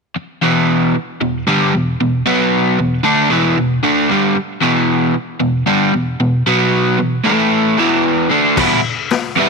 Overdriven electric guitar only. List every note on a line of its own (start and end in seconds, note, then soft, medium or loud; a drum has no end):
0.16 muted overdriven electric guitar stroke medium
0.42 0.94 E2 medium
0.42 0.95 B2 medium
0.42 0.95 E3 medium
0.95 muted overdriven electric guitar stroke medium
1.21 1.42 E2 medium
1.21 1.42 B2 medium
1.47 1.73 G2 medium
1.47 1.73 D3 medium
1.47 1.74 G3 medium
1.75 1.95 E2 medium
1.75 1.95 B2 medium
2.01 2.21 E2 medium
2.01 2.21 B2 medium
2.26 2.78 B2 medium
2.26 2.78 F#3 loud
2.26 2.79 B3 loud
2.78 3.00 E2 medium
2.78 3.00 B2 medium
3.03 3.30 D3 medium
3.03 3.30 A3 medium
3.03 3.31 D4 medium
3.29 3.56 E2 medium
3.29 3.56 B2 loud
3.29 3.57 E3 loud
3.57 3.78 E2 medium
3.57 3.78 B2 medium
3.83 4.09 D3 medium
3.83 4.09 A3 medium
3.83 4.10 D4 medium
4.09 4.35 G2 medium
4.09 4.36 D3 medium
4.09 4.36 G3 medium
4.35 muted overdriven electric guitar stroke medium
4.61 5.13 E2 medium
4.61 5.14 B2 medium
4.61 5.14 E3 medium
5.14 muted overdriven electric guitar stroke medium
5.40 5.62 E2 medium
5.40 5.62 B2 medium
5.66 5.92 G2 loud
5.66 5.93 D3 medium
5.66 5.93 G3 loud
5.93 6.15 E2 medium
5.93 6.15 B2 medium
6.20 6.41 E2 medium
6.20 6.41 B2 medium
6.47 6.98 B2 medium
6.47 6.99 F#3 medium
6.47 6.99 B3 loud
6.99 7.20 E2 medium
6.99 7.20 B2 medium
7.24 7.77 A2 medium
7.24 7.78 E3 medium
7.24 7.78 A3 loud
7.78 8.30 E2 medium
7.78 8.29 B2 medium
7.78 8.30 E3 loud
8.30 8.56 D3 medium
8.30 8.57 A3 medium
8.30 8.57 D4 medium
8.56 8.78 E2 medium
8.56 8.79 B2 medium
8.56 8.79 E3 loud
8.56 8.79 G3 loud
8.56 8.80 B3 medium
8.56 8.80 E4 loud
9.36 9.49 E2 medium
9.36 9.49 B2 medium
9.36 9.49 E3 medium
9.36 9.49 G3 medium
9.36 9.49 B3 loud
9.36 9.49 E4 medium